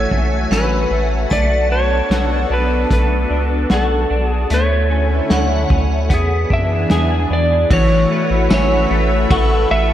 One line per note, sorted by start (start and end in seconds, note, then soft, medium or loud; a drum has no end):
0.00 1.39 E3 medium
0.00 0.11 A3 medium
0.00 1.28 A3 medium
0.00 0.50 C#4 medium
0.00 7.67 F#4 medium
0.00 0.54 C#5 medium
0.00 1.28 E5 medium
0.00 0.98 G#5 medium
0.00 1.28 G#5 medium
0.11 0.46 B1 medium
0.11 0.90 A3 medium
0.11 kick medium
0.51 0.86 A1 medium
0.51 1.39 C#4 medium
0.51 1.34 B4 medium
0.51 1.67 F#5 medium
0.51 snare medium
0.51 closed hi-hat medium
0.91 1.26 A1 loud
0.91 1.30 A3 medium
1.30 2.02 B1 loud
1.30 2.90 A3 medium
1.30 4.48 B3 medium
1.30 4.48 D4 medium
1.30 4.48 A4 medium
1.30 1.72 D5 loud
1.30 2.57 A5 medium
1.30 kick medium
1.30 closed hi-hat medium
1.71 2.50 D4 medium
1.71 2.54 C#5 medium
2.10 2.46 B1 medium
2.10 3.70 F#4 medium
2.10 snare medium
2.10 closed hi-hat medium
2.50 2.86 B1 loud
2.50 3.30 D4 medium
2.50 2.92 B4 medium
2.90 3.26 B1 loud
2.90 4.49 A3 medium
2.90 3.73 B4 medium
2.90 kick medium
2.90 closed hi-hat medium
3.30 3.66 C#2 medium
3.30 4.10 D4 medium
3.70 4.06 B1 medium
3.70 4.59 F#4 medium
3.70 4.29 A4 medium
3.70 snare medium
3.70 closed hi-hat medium
4.10 4.46 B1 loud
4.10 4.90 D4 medium
4.29 4.55 G#4 medium
4.49 5.21 D2 loud
4.49 6.09 D3 medium
4.49 6.09 A3 medium
4.49 6.09 C#4 medium
4.49 6.09 E4 medium
4.49 closed hi-hat medium
4.54 6.17 C#5 loud
4.90 5.68 C#4 medium
5.30 5.66 D2 medium
5.30 6.19 F#4 medium
5.30 6.47 F#5 medium
5.30 snare medium
5.30 closed hi-hat medium
5.70 6.11 D2 loud
5.70 6.18 C#4 medium
5.70 kick medium
6.08 6.46 E2 loud
6.08 7.68 E3 medium
6.08 7.68 B3 medium
6.08 7.78 B3 medium
6.08 7.68 D4 medium
6.08 7.68 G#4 medium
6.08 kick loud
6.08 closed hi-hat medium
6.14 6.88 G#4 medium
6.50 6.86 F#2 medium
6.50 7.29 D4 medium
6.50 7.33 E5 loud
6.50 kick medium
6.90 7.26 E2 loud
6.90 7.79 G#4 medium
6.90 snare medium
6.90 closed hi-hat medium
7.30 7.66 E2 medium
7.30 7.79 D4 medium
7.30 7.73 D5 medium
7.68 8.06 A1 loud
7.68 9.93 E3 medium
7.68 9.93 A3 medium
7.68 9.93 E4 medium
7.68 9.93 F#4 medium
7.68 9.93 B4 medium
7.68 9.93 E5 medium
7.68 8.97 F#5 medium
7.68 kick loud
7.68 ride medium
7.73 8.53 C#5 loud
8.11 8.89 A3 medium
8.30 8.48 A1 loud
8.50 8.86 A1 medium
8.50 9.93 C#4 medium
8.50 snare loud
8.50 ride soft
8.50 tambourine medium
8.54 9.35 C#5 loud
8.90 9.26 A1 loud
8.90 9.70 A3 medium
9.30 9.66 A1 loud
9.30 9.93 F#4 medium
9.30 9.73 A4 medium
9.30 kick loud
9.30 ride medium
9.70 9.93 A1 loud
9.70 9.93 A3 medium
9.70 9.93 E5 loud